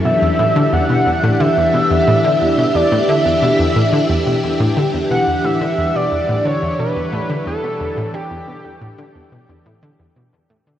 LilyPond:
<<
  \new Staff \with { instrumentName = "Analog synth lead" } { \time 4/4 \key e \minor \tempo 4 = 89 e''4 fis''4 e''2 | d''8 e''2 r4 fis''8 | e''8. d''8. cis''8 b'4 a'4 | g'4. r2 r8 | }
  \new Staff \with { instrumentName = "String machine" } { \time 4/4 \key e \minor <e d' g'>1~ | <e d' g'>1~ | <e d' g'>1~ | <e d' g'>1 | }
  \new Staff \with { instrumentName = "Synth arpeggio sound" } { \clef bass \time 4/4 \key e \minor b,16 e,16 a,16 d16 e,16 b,16 e,16 a,16 d16 e,16 b,16 e,16 a,16 d16 e,16 b,16 | e,16 a,16 d16 e,16 b,16 e,16 a,16 d16 e,16 b,16 e,16 a,16 d16 e,16 b,16 e,16 | a,16 d16 e,16 b,16 e,16 a,16 d16 e,16 b,16 e,16 a,16 d16 e,16 b,16 e,16 a,16 | d16 e,16 b,16 e,16 a,16 d16 e,16 b,16 e,16 a,16 d16 e,16 b,16 e,16 a,16 d16 | }
>>